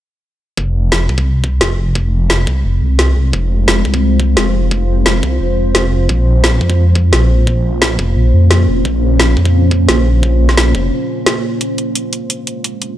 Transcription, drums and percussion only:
0.57 kick loud
0.92 snare loud
1.09 kick medium
1.18 kick loud
1.44 kick loud
1.61 snare loud
1.95 kick loud
2.30 snare loud
2.47 kick loud
2.99 snare loud
3.33 kick loud
3.68 snare loud
3.85 kick medium
3.94 kick loud
4.20 kick loud
4.37 snare loud
4.71 kick loud
5.06 snare loud
5.23 kick loud
5.75 snare loud
6.09 kick loud
6.44 snare loud
6.61 kick medium
6.70 kick loud
6.95 kick loud
7.13 snare loud
7.47 kick loud
7.82 snare loud
7.99 kick loud
8.51 snare loud
8.85 kick loud
9.20 snare loud
9.37 kick medium
9.45 kick loud
9.71 kick loud
9.89 snare loud
10.23 kick loud
10.49 kick medium
10.49 snare soft
10.57 snare loud
10.75 kick loud
11.26 snare loud
11.61 closed hi-hat medium
11.78 closed hi-hat medium
11.95 closed hi-hat loud
12.13 closed hi-hat medium
12.30 closed hi-hat medium
12.47 closed hi-hat medium
12.64 closed hi-hat medium
12.82 closed hi-hat medium

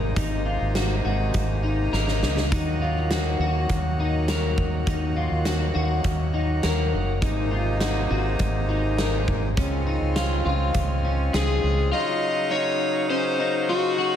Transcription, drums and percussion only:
0.16 kick medium
0.16 closed hi-hat medium
0.75 snare medium
0.75 closed hi-hat medium
1.34 kick medium
1.34 closed hi-hat medium
1.93 snare soft
2.08 snare soft
2.23 snare medium
2.37 snare medium
2.52 kick loud
2.52 closed hi-hat medium
3.11 snare medium
3.11 closed hi-hat medium
3.69 kick medium
3.69 closed hi-hat medium
4.28 snare medium
4.28 closed hi-hat medium
4.58 kick medium
4.87 kick medium
4.87 closed hi-hat medium
5.45 snare loud
5.45 closed hi-hat medium
6.04 kick medium
6.04 closed hi-hat medium
6.63 snare medium
6.63 closed hi-hat soft
7.22 kick loud
7.22 closed hi-hat medium
7.81 snare loud
7.81 closed hi-hat medium
8.39 kick medium
8.39 closed hi-hat medium
8.99 snare medium
8.99 closed hi-hat soft
9.28 kick medium
9.57 kick loud
9.57 closed hi-hat medium
10.16 snare loud
10.16 closed hi-hat medium
10.74 kick medium
10.74 closed hi-hat medium
11.34 snare loud
11.34 closed hi-hat soft

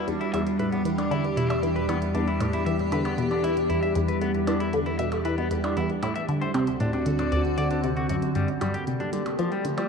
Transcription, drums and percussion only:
0.08 closed hi-hat soft
0.21 closed hi-hat soft
0.34 closed hi-hat medium
0.34 percussion blips medium
0.47 closed hi-hat soft
0.59 closed hi-hat soft
0.72 closed hi-hat soft
0.85 closed hi-hat medium
0.98 closed hi-hat soft
0.98 percussion blips soft
1.12 closed hi-hat soft
1.24 closed hi-hat soft
1.37 closed hi-hat medium
1.50 closed hi-hat soft
1.50 percussion blips medium
1.63 closed hi-hat soft
1.76 closed hi-hat soft
1.89 closed hi-hat medium
1.89 percussion blips medium
2.02 closed hi-hat soft
2.15 closed hi-hat soft
2.28 closed hi-hat soft
2.40 closed hi-hat medium
2.40 percussion blips medium
2.53 closed hi-hat soft
2.67 closed hi-hat soft
2.79 closed hi-hat soft
2.92 closed hi-hat medium
3.05 closed hi-hat soft
3.05 percussion blips soft
3.18 closed hi-hat soft
3.31 closed hi-hat soft
3.44 closed hi-hat medium
3.57 closed hi-hat soft
3.70 closed hi-hat soft
3.83 closed hi-hat soft
3.95 closed hi-hat medium
4.08 closed hi-hat soft
4.21 closed hi-hat soft
4.35 closed hi-hat soft
4.47 closed hi-hat medium
4.47 percussion blips medium
4.60 closed hi-hat soft
4.73 closed hi-hat soft
4.86 closed hi-hat soft
4.99 closed hi-hat medium
5.12 closed hi-hat soft
5.12 percussion blips soft
5.25 closed hi-hat soft
5.38 closed hi-hat soft
5.51 closed hi-hat medium
5.64 closed hi-hat soft
5.64 percussion blips medium
5.77 closed hi-hat soft
5.90 closed hi-hat soft
6.03 closed hi-hat medium
6.03 percussion blips medium
6.16 closed hi-hat soft
6.29 closed hi-hat soft
6.42 closed hi-hat soft
6.54 closed hi-hat medium
6.54 percussion blips medium
6.67 closed hi-hat soft
6.80 closed hi-hat soft
6.93 closed hi-hat soft
7.06 closed hi-hat medium
7.19 closed hi-hat soft
7.19 percussion blips medium
7.32 closed hi-hat soft
7.45 closed hi-hat soft
7.58 closed hi-hat medium
7.71 closed hi-hat soft
7.84 closed hi-hat soft
7.97 closed hi-hat soft
8.09 closed hi-hat medium
8.22 closed hi-hat soft
8.35 closed hi-hat medium
8.48 closed hi-hat soft
8.61 closed hi-hat medium
8.61 percussion blips medium
8.74 closed hi-hat medium
8.87 closed hi-hat soft
9.00 closed hi-hat soft
9.13 closed hi-hat medium
9.26 closed hi-hat soft
9.26 percussion blips medium
9.39 closed hi-hat medium
9.52 closed hi-hat soft
9.65 closed hi-hat medium
9.78 closed hi-hat soft
9.78 percussion blips medium

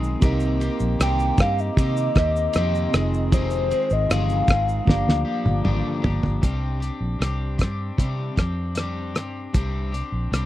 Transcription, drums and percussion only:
0.04 shaker medium
0.22 kick loud
0.22 ride medium
0.22 shaker medium
0.40 shaker medium
0.61 ride soft
0.61 shaker medium
0.80 shaker medium
1.00 cross-stick loud
1.00 ride medium
1.00 shaker medium
1.19 shaker soft
1.38 kick medium
1.38 cross-stick loud
1.38 ride soft
1.38 shaker medium
1.59 shaker soft
1.77 kick loud
1.77 ride medium
1.77 shaker medium
1.97 shaker medium
2.15 kick loud
2.15 cross-stick loud
2.15 ride soft
2.15 shaker medium
2.36 shaker medium
2.53 cross-stick medium
2.53 ride medium
2.53 shaker medium
2.75 shaker medium
2.94 cross-stick loud
2.94 ride soft
2.94 shaker medium
3.14 shaker soft
3.32 kick loud
3.32 ride medium
3.32 shaker medium
3.50 shaker medium
3.71 ride soft
3.71 shaker medium
3.90 shaker medium
4.11 cross-stick loud
4.11 ride medium
4.11 shaker medium
4.29 shaker medium
4.48 kick medium
4.48 cross-stick loud
4.48 ride medium
4.48 shaker medium
4.69 shaker soft
4.87 kick loud
4.87 snare medium
5.09 snare medium
5.46 high tom medium
5.65 mid tom medium
6.04 floor tom loud
6.23 floor tom medium
6.43 kick loud
6.43 closed hi-hat medium
6.82 closed hi-hat soft
7.22 cross-stick medium
7.22 closed hi-hat medium
7.59 kick medium
7.59 cross-stick medium
7.59 closed hi-hat medium
7.98 kick medium
7.98 closed hi-hat medium
8.37 kick medium
8.37 cross-stick medium
8.37 closed hi-hat soft
8.75 cross-stick medium
8.75 closed hi-hat medium
9.15 cross-stick medium
9.15 closed hi-hat soft
9.54 kick loud
9.54 closed hi-hat medium
9.94 closed hi-hat soft
10.33 cross-stick medium
10.33 closed hi-hat medium

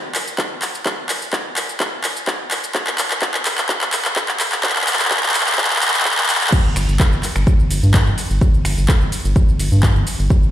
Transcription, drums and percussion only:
0.15 clap medium
0.15 open hi-hat loud
0.15 shaker medium
0.27 shaker soft
0.38 kick loud
0.38 clap medium
0.38 shaker soft
0.62 clap medium
0.62 open hi-hat medium
0.62 shaker medium
0.75 shaker soft
0.86 kick loud
0.86 clap medium
0.86 shaker soft
1.09 clap medium
1.09 open hi-hat loud
1.09 shaker medium
1.22 shaker soft
1.33 kick loud
1.33 clap medium
1.33 shaker soft
1.56 clap medium
1.56 open hi-hat medium
1.56 shaker medium
1.69 shaker soft
1.80 kick loud
1.80 clap medium
1.80 shaker soft
2.04 clap medium
2.04 open hi-hat loud
2.04 shaker medium
2.16 shaker soft
2.27 kick loud
2.27 clap medium
2.27 shaker soft
2.51 clap medium
2.51 open hi-hat medium
2.51 shaker medium
2.64 shaker soft
2.75 kick loud
2.75 clap medium
2.75 shaker soft
2.87 clap medium
2.98 clap medium
2.98 open hi-hat loud
2.98 shaker medium
3.11 clap medium
3.11 shaker soft
3.22 kick loud
3.22 clap medium
3.22 shaker soft
3.34 clap medium
3.45 clap loud
3.45 open hi-hat medium
3.45 shaker medium
3.58 clap medium
3.58 shaker soft
3.69 kick loud
3.69 clap loud
3.69 shaker soft
3.81 clap medium
3.93 clap medium
3.93 open hi-hat loud
3.93 shaker medium
4.05 clap medium
4.05 shaker soft
4.16 kick loud
4.16 clap loud
4.16 shaker soft
4.28 clap medium
4.40 clap loud
4.40 open hi-hat medium
4.40 shaker medium
4.52 clap medium
4.52 shaker soft
4.63 kick loud
4.63 clap loud
4.63 shaker soft
4.69 clap medium
4.76 clap medium
4.81 clap medium
4.87 clap loud
4.87 open hi-hat loud
4.87 shaker medium
4.93 clap medium
4.99 clap loud
4.99 shaker soft
5.05 clap medium
5.11 kick loud
5.11 clap loud
5.11 shaker soft
5.17 clap medium
5.23 clap loud
5.29 clap medium
5.34 clap loud
5.34 open hi-hat loud
5.34 shaker medium
5.40 clap medium
5.47 clap loud
5.47 shaker soft
5.52 clap loud
5.58 kick loud
5.58 clap loud
5.58 shaker soft
5.64 clap loud
5.70 clap loud
5.76 clap loud
5.82 clap loud
5.82 open hi-hat loud
5.82 shaker medium
5.88 clap loud
5.94 clap loud
5.94 shaker soft
6.00 clap loud
6.05 kick loud
6.05 clap loud
6.05 shaker soft
6.11 clap loud
6.17 clap loud
6.23 clap loud
6.29 clap loud
6.29 open hi-hat medium
6.29 shaker medium
6.35 clap loud
6.41 clap medium
6.41 shaker soft
6.47 clap loud
6.52 kick loud
6.52 crash loud
6.52 shaker soft
6.65 shaker soft
6.76 finger snap medium
6.76 open hi-hat loud
6.76 ride medium
6.76 shaker medium
6.89 shaker soft
7.00 kick loud
7.00 clap loud
7.00 shaker soft
7.13 shaker soft
7.23 clap soft
7.23 open hi-hat loud
7.23 ride medium
7.23 shaker medium
7.36 finger snap medium
7.36 shaker soft
7.47 kick loud
7.47 shaker soft
7.60 shaker soft
7.71 open hi-hat loud
7.71 ride medium
7.71 shaker medium
7.83 shaker soft
7.94 kick loud
7.94 clap loud
7.94 shaker soft
8.07 shaker soft
8.18 open hi-hat loud
8.18 ride medium
8.18 shaker medium
8.31 shaker soft
8.41 kick loud
8.41 shaker soft
8.54 shaker soft
8.65 finger snap medium
8.65 open hi-hat loud
8.65 ride medium
8.65 shaker medium
8.78 shaker soft
8.88 kick loud
8.88 clap loud
8.88 shaker soft
9.01 shaker soft
9.12 open hi-hat loud
9.12 ride medium
9.12 shaker medium
9.25 shaker soft
9.36 kick loud
9.36 shaker soft
9.49 shaker soft
9.60 open hi-hat loud
9.60 ride medium
9.60 shaker medium
9.72 shaker soft
9.83 kick loud
9.83 clap loud
9.83 shaker soft
9.96 shaker soft
10.07 open hi-hat loud
10.07 ride medium
10.07 shaker medium
10.20 shaker soft
10.30 kick loud
10.30 shaker soft
10.43 shaker soft

